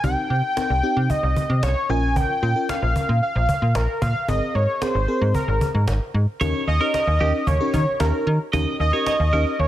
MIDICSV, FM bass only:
0, 0, Header, 1, 2, 480
1, 0, Start_track
1, 0, Tempo, 530973
1, 33, Time_signature, 4, 2, 24, 8
1, 8749, End_track
2, 0, Start_track
2, 0, Title_t, "FM bass"
2, 0, Program_c, 0, 39
2, 33, Note_on_c, 0, 36, 108
2, 141, Note_off_c, 0, 36, 0
2, 272, Note_on_c, 0, 48, 96
2, 380, Note_off_c, 0, 48, 0
2, 633, Note_on_c, 0, 36, 96
2, 741, Note_off_c, 0, 36, 0
2, 873, Note_on_c, 0, 48, 102
2, 981, Note_off_c, 0, 48, 0
2, 1113, Note_on_c, 0, 36, 94
2, 1221, Note_off_c, 0, 36, 0
2, 1353, Note_on_c, 0, 48, 102
2, 1461, Note_off_c, 0, 48, 0
2, 1473, Note_on_c, 0, 36, 98
2, 1581, Note_off_c, 0, 36, 0
2, 1713, Note_on_c, 0, 34, 101
2, 2036, Note_off_c, 0, 34, 0
2, 2194, Note_on_c, 0, 46, 99
2, 2301, Note_off_c, 0, 46, 0
2, 2553, Note_on_c, 0, 34, 97
2, 2661, Note_off_c, 0, 34, 0
2, 2793, Note_on_c, 0, 46, 102
2, 2901, Note_off_c, 0, 46, 0
2, 3033, Note_on_c, 0, 34, 110
2, 3141, Note_off_c, 0, 34, 0
2, 3273, Note_on_c, 0, 46, 99
2, 3381, Note_off_c, 0, 46, 0
2, 3393, Note_on_c, 0, 34, 100
2, 3501, Note_off_c, 0, 34, 0
2, 3632, Note_on_c, 0, 46, 102
2, 3740, Note_off_c, 0, 46, 0
2, 3873, Note_on_c, 0, 32, 122
2, 3981, Note_off_c, 0, 32, 0
2, 4113, Note_on_c, 0, 44, 97
2, 4221, Note_off_c, 0, 44, 0
2, 4474, Note_on_c, 0, 32, 93
2, 4581, Note_off_c, 0, 32, 0
2, 4714, Note_on_c, 0, 44, 100
2, 4821, Note_off_c, 0, 44, 0
2, 4954, Note_on_c, 0, 32, 101
2, 5061, Note_off_c, 0, 32, 0
2, 5194, Note_on_c, 0, 44, 100
2, 5301, Note_off_c, 0, 44, 0
2, 5314, Note_on_c, 0, 32, 101
2, 5421, Note_off_c, 0, 32, 0
2, 5554, Note_on_c, 0, 44, 99
2, 5661, Note_off_c, 0, 44, 0
2, 5794, Note_on_c, 0, 39, 115
2, 5901, Note_off_c, 0, 39, 0
2, 6034, Note_on_c, 0, 39, 102
2, 6141, Note_off_c, 0, 39, 0
2, 6394, Note_on_c, 0, 39, 98
2, 6501, Note_off_c, 0, 39, 0
2, 6514, Note_on_c, 0, 39, 105
2, 6621, Note_off_c, 0, 39, 0
2, 6753, Note_on_c, 0, 39, 106
2, 6861, Note_off_c, 0, 39, 0
2, 6993, Note_on_c, 0, 51, 103
2, 7101, Note_off_c, 0, 51, 0
2, 7234, Note_on_c, 0, 39, 105
2, 7341, Note_off_c, 0, 39, 0
2, 7474, Note_on_c, 0, 51, 107
2, 7581, Note_off_c, 0, 51, 0
2, 7714, Note_on_c, 0, 39, 113
2, 7821, Note_off_c, 0, 39, 0
2, 7954, Note_on_c, 0, 39, 96
2, 8061, Note_off_c, 0, 39, 0
2, 8314, Note_on_c, 0, 39, 96
2, 8422, Note_off_c, 0, 39, 0
2, 8434, Note_on_c, 0, 39, 110
2, 8541, Note_off_c, 0, 39, 0
2, 8673, Note_on_c, 0, 39, 108
2, 8749, Note_off_c, 0, 39, 0
2, 8749, End_track
0, 0, End_of_file